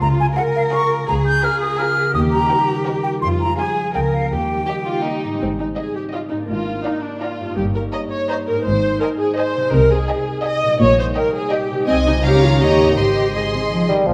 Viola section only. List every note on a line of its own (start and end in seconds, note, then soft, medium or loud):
0.37 0.63 F4 medium
0.73 0.99 F4 medium
1.45 1.71 F4 medium
1.79 2.06 F4 medium
2.51 2.77 D#4 soft
2.88 3.14 D#4 soft
3.60 3.86 C4 soft
3.94 4.22 A#3 soft
4.68 4.95 A#3 soft
5.04 5.32 A#3 soft
5.42 5.49 C4 medium
5.60 5.67 D#4 medium
5.77 5.95 G#4 medium
5.96 6.03 G4 medium
6.13 6.20 F4 medium
6.30 6.38 D#4 medium
6.49 6.85 F4 medium
6.85 7.03 D#4 medium
7.03 7.21 D4 medium
7.20 7.57 F4 medium
7.57 7.64 G4 medium
7.74 7.82 A#4 medium
7.92 7.99 D#5 medium
8.11 8.29 C#5 medium
8.29 8.36 C5 medium
8.47 8.65 A#4 medium
8.64 9.00 C5 medium
9.01 9.08 A#4 medium
9.19 9.37 G#4 medium
9.37 9.73 C5 medium
9.73 9.91 A#4 loud
9.91 10.45 G#4 medium
10.45 10.80 D#5 medium
10.81 10.98 C#5 medium
10.99 11.06 C5 medium
11.16 11.34 A#4 medium
11.34 11.52 G#4 medium
11.53 11.88 G4 medium
11.87 11.95 C4 medium
12.06 12.13 D#4 medium
12.25 12.42 G4 medium
12.43 12.61 F4 medium
12.61 12.96 G4 medium
12.97 13.34 G4 medium
13.34 13.90 G#4 medium